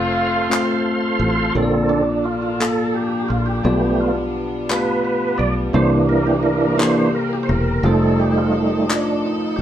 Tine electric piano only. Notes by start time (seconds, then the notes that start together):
Already playing: A3 C4 F4 C5
0.50 A3 C4 F4 C5
1.55 A#2 A#3 F4 A4 C#5
1.63 D5
2.60 A#3 F4 A4 F5
3.64 B2 B3 F4 G4 D5
4.70 A3 F4 G4 F5
4.76 B3
5.74 C3 A#3 E4 G4 C5
6.79 A#3 E4 G4 A4
7.85 A3 D#4 F4 C5
8.90 A3 D#4 F4 D#5